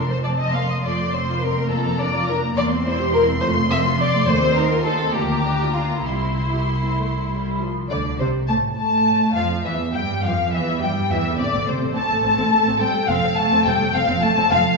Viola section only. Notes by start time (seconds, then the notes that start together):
0.25 C4
0.54 A#3
0.85 F3 A3
1.00 A3
1.15 C4
1.29 F4
1.44 C4
1.58 A3
1.74 F3 A#3
1.88 A#3
2.02 D4
2.16 F4
2.31 D4
2.45 A#3
2.58 A#3
2.73 C4
2.86 E4
3.01 G4
3.14 E4
3.28 C4
3.43 F3 A3
3.57 A3
3.71 C4
3.85 F4
3.99 C4
4.14 A3
4.28 A3
4.42 C4
4.56 D#4
4.71 F4
4.86 D#4
5.01 C4
5.15 F3 A#3
5.29 A#3
5.45 D4
5.61 F4
5.76 D4
5.91 A#3
6.07 G3
6.23 C4
6.38 E4
6.53 G4
6.68 E4
6.84 C4
6.99 A3
7.30 G3
7.60 F3
7.90 D3
8.20 C3
8.48 A3
8.78 A3
9.37 F3
9.65 E3
9.95 G3
10.24 F3
10.52 E3
10.82 G3
11.11 E3
11.38 C4 A4
11.53 C4
11.67 A3
11.80 C4
11.94 C4
12.08 A3
12.23 C4
12.38 C4
12.52 A3
12.66 C4
12.81 C4
13.09 C4
13.23 C4
13.38 A3
13.52 C4
13.66 C4
13.80 A3
13.94 C4
14.08 C4
14.23 A3
14.37 C4
14.52 C4